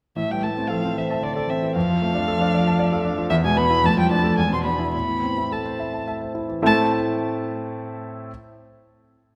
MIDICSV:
0, 0, Header, 1, 4, 480
1, 0, Start_track
1, 0, Key_signature, 0, "minor"
1, 0, Tempo, 527241
1, 145, Time_signature, 3, 2, 24, 8
1, 3981, Tempo, 565504
1, 5901, Tempo, 548948
1, 8279, End_track
2, 0, Start_track
2, 0, Title_t, "Violin"
2, 0, Program_c, 0, 40
2, 148, Note_on_c, 0, 76, 73
2, 286, Note_on_c, 0, 79, 66
2, 300, Note_off_c, 0, 76, 0
2, 396, Note_on_c, 0, 81, 65
2, 410, Note_off_c, 0, 79, 0
2, 616, Note_on_c, 0, 77, 76
2, 630, Note_off_c, 0, 81, 0
2, 888, Note_on_c, 0, 76, 61
2, 901, Note_off_c, 0, 77, 0
2, 1119, Note_on_c, 0, 74, 74
2, 1133, Note_off_c, 0, 76, 0
2, 1231, Note_off_c, 0, 74, 0
2, 1237, Note_on_c, 0, 74, 66
2, 1361, Note_on_c, 0, 76, 62
2, 1375, Note_off_c, 0, 74, 0
2, 1596, Note_off_c, 0, 76, 0
2, 1600, Note_on_c, 0, 77, 99
2, 2987, Note_off_c, 0, 77, 0
2, 3002, Note_on_c, 0, 76, 107
2, 3052, Note_off_c, 0, 76, 0
2, 3144, Note_on_c, 0, 80, 91
2, 3249, Note_on_c, 0, 83, 100
2, 3263, Note_off_c, 0, 80, 0
2, 3511, Note_on_c, 0, 81, 99
2, 3524, Note_off_c, 0, 83, 0
2, 3621, Note_off_c, 0, 81, 0
2, 3638, Note_on_c, 0, 79, 84
2, 3744, Note_off_c, 0, 79, 0
2, 3748, Note_on_c, 0, 81, 87
2, 3982, Note_off_c, 0, 81, 0
2, 3987, Note_on_c, 0, 80, 83
2, 4098, Note_off_c, 0, 80, 0
2, 4117, Note_on_c, 0, 84, 81
2, 4161, Note_off_c, 0, 84, 0
2, 4211, Note_on_c, 0, 83, 64
2, 4448, Note_off_c, 0, 83, 0
2, 4461, Note_on_c, 0, 83, 77
2, 4952, Note_on_c, 0, 81, 57
2, 4965, Note_off_c, 0, 83, 0
2, 5427, Note_off_c, 0, 81, 0
2, 5921, Note_on_c, 0, 81, 93
2, 6179, Note_off_c, 0, 81, 0
2, 8279, End_track
3, 0, Start_track
3, 0, Title_t, "Grand piano"
3, 0, Program_c, 1, 0
3, 148, Note_on_c, 1, 45, 47
3, 277, Note_on_c, 1, 52, 42
3, 337, Control_c, 1, 64, 127
3, 396, Note_on_c, 1, 57, 36
3, 468, Note_off_c, 1, 52, 0
3, 521, Note_on_c, 1, 60, 39
3, 588, Note_off_c, 1, 57, 0
3, 637, Note_on_c, 1, 69, 44
3, 710, Note_off_c, 1, 60, 0
3, 768, Note_on_c, 1, 60, 43
3, 828, Note_off_c, 1, 69, 0
3, 886, Note_on_c, 1, 72, 44
3, 953, Note_off_c, 1, 60, 0
3, 1006, Note_on_c, 1, 81, 50
3, 1072, Note_off_c, 1, 72, 0
3, 1119, Note_on_c, 1, 72, 49
3, 1191, Note_off_c, 1, 81, 0
3, 1241, Note_on_c, 1, 69, 44
3, 1308, Note_off_c, 1, 72, 0
3, 1361, Note_on_c, 1, 60, 46
3, 1428, Note_off_c, 1, 69, 0
3, 1478, Note_on_c, 1, 52, 45
3, 1548, Note_off_c, 1, 60, 0
3, 1557, Note_off_c, 1, 45, 0
3, 1595, Note_off_c, 1, 52, 0
3, 1602, Note_on_c, 1, 41, 65
3, 1609, Control_c, 1, 64, 0
3, 1726, Note_on_c, 1, 53, 51
3, 1752, Control_c, 1, 64, 127
3, 1836, Note_on_c, 1, 57, 48
3, 1909, Note_off_c, 1, 53, 0
3, 1950, Note_on_c, 1, 62, 52
3, 2024, Note_off_c, 1, 57, 0
3, 2074, Note_on_c, 1, 69, 55
3, 2140, Note_off_c, 1, 62, 0
3, 2192, Note_on_c, 1, 62, 63
3, 2260, Note_off_c, 1, 69, 0
3, 2315, Note_on_c, 1, 74, 61
3, 2377, Note_off_c, 1, 62, 0
3, 2434, Note_on_c, 1, 81, 60
3, 2497, Note_off_c, 1, 74, 0
3, 2543, Note_on_c, 1, 74, 68
3, 2615, Note_off_c, 1, 81, 0
3, 2664, Note_on_c, 1, 69, 59
3, 2729, Note_off_c, 1, 74, 0
3, 2775, Note_on_c, 1, 62, 59
3, 2849, Note_off_c, 1, 69, 0
3, 2895, Note_on_c, 1, 53, 57
3, 2965, Note_off_c, 1, 62, 0
3, 2980, Note_off_c, 1, 41, 0
3, 3006, Note_on_c, 1, 40, 74
3, 3013, Note_off_c, 1, 53, 0
3, 3030, Control_c, 1, 64, 0
3, 3132, Note_on_c, 1, 47, 61
3, 3203, Control_c, 1, 64, 127
3, 3254, Note_on_c, 1, 59, 50
3, 3323, Note_off_c, 1, 47, 0
3, 3372, Note_on_c, 1, 64, 54
3, 3444, Note_off_c, 1, 59, 0
3, 3473, Note_off_c, 1, 40, 0
3, 3491, Note_off_c, 1, 64, 0
3, 3494, Note_on_c, 1, 41, 66
3, 3508, Control_c, 1, 64, 0
3, 3616, Note_on_c, 1, 53, 57
3, 3653, Control_c, 1, 64, 127
3, 3740, Note_on_c, 1, 62, 57
3, 3809, Note_off_c, 1, 53, 0
3, 3859, Note_on_c, 1, 69, 52
3, 3933, Note_off_c, 1, 62, 0
3, 3966, Note_off_c, 1, 41, 0
3, 3981, Note_off_c, 1, 69, 0
3, 3983, Note_on_c, 1, 40, 60
3, 3995, Control_c, 1, 64, 0
3, 4102, Note_on_c, 1, 47, 44
3, 4157, Control_c, 1, 64, 127
3, 4216, Note_on_c, 1, 62, 40
3, 4289, Note_off_c, 1, 47, 0
3, 4339, Note_on_c, 1, 64, 44
3, 4407, Note_off_c, 1, 62, 0
3, 4442, Note_off_c, 1, 40, 0
3, 4458, Note_off_c, 1, 64, 0
3, 4465, Note_on_c, 1, 45, 44
3, 4474, Control_c, 1, 64, 0
3, 4580, Note_on_c, 1, 52, 36
3, 4641, Control_c, 1, 64, 127
3, 4712, Note_on_c, 1, 60, 35
3, 4773, Note_off_c, 1, 52, 0
3, 4835, Note_on_c, 1, 64, 36
3, 4899, Note_off_c, 1, 60, 0
3, 4954, Note_on_c, 1, 69, 38
3, 5021, Note_off_c, 1, 64, 0
3, 5070, Note_on_c, 1, 72, 41
3, 5140, Note_off_c, 1, 69, 0
3, 5189, Note_on_c, 1, 76, 42
3, 5258, Note_off_c, 1, 72, 0
3, 5306, Note_on_c, 1, 81, 37
3, 5377, Note_off_c, 1, 76, 0
3, 5426, Note_on_c, 1, 76, 43
3, 5496, Note_off_c, 1, 81, 0
3, 5535, Note_on_c, 1, 72, 33
3, 5616, Note_off_c, 1, 76, 0
3, 5656, Note_on_c, 1, 64, 36
3, 5732, Note_off_c, 1, 72, 0
3, 5773, Note_on_c, 1, 52, 37
3, 5850, Note_off_c, 1, 64, 0
3, 5870, Note_off_c, 1, 45, 0
3, 5890, Note_on_c, 1, 45, 65
3, 5892, Note_on_c, 1, 76, 59
3, 5893, Note_on_c, 1, 64, 66
3, 5895, Note_off_c, 1, 52, 0
3, 5895, Note_on_c, 1, 57, 68
3, 5897, Note_on_c, 1, 60, 69
3, 5897, Note_on_c, 1, 69, 63
3, 5916, Control_c, 1, 64, 0
3, 6056, Control_c, 1, 64, 127
3, 6162, Note_off_c, 1, 45, 0
3, 6163, Note_off_c, 1, 64, 0
3, 6163, Note_off_c, 1, 76, 0
3, 6165, Note_off_c, 1, 57, 0
3, 6166, Note_off_c, 1, 60, 0
3, 6166, Note_off_c, 1, 69, 0
3, 7359, Control_c, 1, 64, 0
3, 8279, End_track
4, 0, Start_track
4, 0, Title_t, "Cello"
4, 0, Program_c, 2, 42
4, 145, Note_on_c, 2, 52, 59
4, 257, Note_off_c, 2, 52, 0
4, 263, Note_on_c, 2, 55, 59
4, 391, Note_on_c, 2, 57, 53
4, 404, Note_off_c, 2, 55, 0
4, 626, Note_off_c, 2, 57, 0
4, 631, Note_on_c, 2, 53, 69
4, 868, Note_off_c, 2, 53, 0
4, 877, Note_on_c, 2, 52, 53
4, 1102, Note_off_c, 2, 52, 0
4, 1107, Note_on_c, 2, 50, 56
4, 1220, Note_off_c, 2, 50, 0
4, 1225, Note_on_c, 2, 50, 59
4, 1340, Note_off_c, 2, 50, 0
4, 1346, Note_on_c, 2, 52, 60
4, 1601, Note_on_c, 2, 53, 84
4, 1615, Note_off_c, 2, 52, 0
4, 3016, Note_off_c, 2, 53, 0
4, 3025, Note_on_c, 2, 52, 86
4, 3127, Note_off_c, 2, 52, 0
4, 3133, Note_on_c, 2, 56, 83
4, 3239, Note_off_c, 2, 56, 0
4, 3245, Note_on_c, 2, 59, 88
4, 3317, Note_off_c, 2, 59, 0
4, 3502, Note_on_c, 2, 57, 90
4, 3613, Note_on_c, 2, 55, 74
4, 3627, Note_off_c, 2, 57, 0
4, 3729, Note_on_c, 2, 57, 85
4, 3743, Note_off_c, 2, 55, 0
4, 3980, Note_on_c, 2, 56, 73
4, 3993, Note_off_c, 2, 57, 0
4, 4088, Note_on_c, 2, 60, 69
4, 4101, Note_off_c, 2, 56, 0
4, 4199, Note_off_c, 2, 60, 0
4, 4204, Note_on_c, 2, 59, 59
4, 4272, Note_off_c, 2, 59, 0
4, 4442, Note_on_c, 2, 59, 60
4, 4920, Note_off_c, 2, 59, 0
4, 4925, Note_on_c, 2, 57, 46
4, 5403, Note_off_c, 2, 57, 0
4, 5899, Note_on_c, 2, 57, 78
4, 6167, Note_off_c, 2, 57, 0
4, 8279, End_track
0, 0, End_of_file